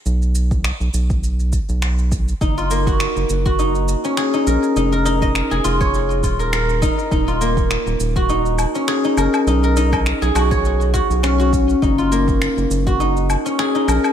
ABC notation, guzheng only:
X:1
M:4/4
L:1/16
Q:"Swing 16ths" 1/4=102
K:Ebm
V:1 name="Guzheng"
z16 | E F B, G4 G E z2 D A E B z | E B E e2 A F d3 F B B z E z | E F B,4 z G E z2 D A E B z |
^D B D ^d2 ^G ^F _d3 F2 _D F3 | E F B,4 z G E z2 D A E B z |]